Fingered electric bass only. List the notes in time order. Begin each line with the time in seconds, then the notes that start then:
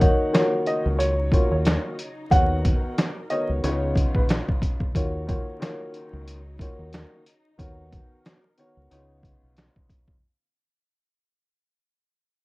0.86 C#2
1.52 D#2
2.31 D#2
3.49 C#2
3.64 C#2
4.15 A#1
4.95 D#2
6.13 C#2
6.79 D#2
7.59 D#2
8.77 C#2
8.91 C#2
9.43 B1